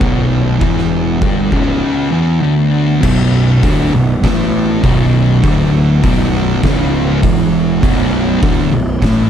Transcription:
Already playing: B3 F#4 C#5
0.00 B0 B1 B2, kick, crash
0.61 E1 E2 E3, kick, crash
0.78 snare
1.22 G1 G2 G3, kick, crash
1.52 C#1 C#2 C#3, kick
2.12 E2 E3
2.42 D2 D3
3.03 B0 B1 B2 B3 F#4 C#5, kick, crash
3.63 D1 D2 D3, kick, open hi-hat
3.93 B0 B1
4.24 A1 A2 A3, kick, snare, open hi-hat
4.84 B0 B1 B2, kick, open hi-hat
5.43 D1 D2 D3, kick, open hi-hat
6.03 B0 B1 B2, kick, open hi-hat
6.63 C#1 C#2 C#3, kick, snare, open hi-hat
7.23 E1 E2 E3, kick, open hi-hat
7.83 B0 B1 B2 E4, kick, open hi-hat
8.43 D1 D2 D3, kick, open hi-hat
8.72 B0 B1
9.02 A1 A2 A3, kick, snare, open hi-hat

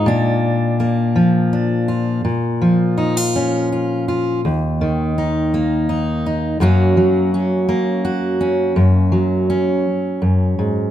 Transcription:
0.06 A#2 D4
0.80 A#3
1.16 F3
1.53 D4
1.88 F4
2.25 A#2
2.62 F3
2.98 D#4
3.17 F4
3.36 C#4
3.72 F4
4.08 F4
4.45 D#2
4.81 D#3
5.18 D#4
5.54 A#3
5.89 D#4
6.26 D#4
6.60 F#2 F#3 A#3 C#4 F#4
6.97 F#3
7.34 C#4
7.69 A#3
8.05 F#4
8.41 C#4
8.76 F#2
9.12 F#3
9.50 C#4
10.22 F#2
10.59 G#2

